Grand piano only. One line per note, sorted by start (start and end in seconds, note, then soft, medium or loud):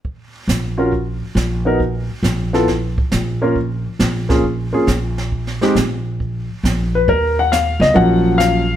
0.77 0.90 C#4 medium
0.77 0.91 F4 soft
0.77 0.91 F#4 soft
0.77 0.91 A#4 medium
1.65 1.78 B3 medium
1.65 1.79 D#4 soft
1.65 1.79 F#4 soft
1.65 1.79 A#4 medium
2.53 2.66 B3 medium
2.53 2.66 E4 soft
2.53 2.67 F4 soft
2.53 2.67 A4 medium
3.42 3.54 A#3 medium
3.42 3.55 C#4 medium
3.42 3.55 F4 medium
3.42 3.55 A#4 medium
4.29 4.42 A#3 medium
4.29 4.42 C#4 soft
4.29 4.43 F4 soft
4.29 4.43 G#4 medium
4.73 4.86 A#3 medium
4.73 4.86 C#4 soft
4.73 4.86 F4 soft
4.73 4.87 G#4 medium
5.61 5.74 G#3 medium
5.61 5.74 C4 medium
5.61 5.75 D#4 medium
5.61 5.75 G4 medium
6.95 7.07 B4 medium
7.09 7.36 A#4 medium
7.39 7.51 F#5 medium
7.52 7.79 F5 medium
7.81 7.96 D#5 medium
7.94 8.63 F3 medium
7.94 8.62 F#3 medium
7.94 8.62 A#3 soft
7.94 8.62 C#4 medium
7.94 8.36 F#5 medium
8.38 8.76 F5 medium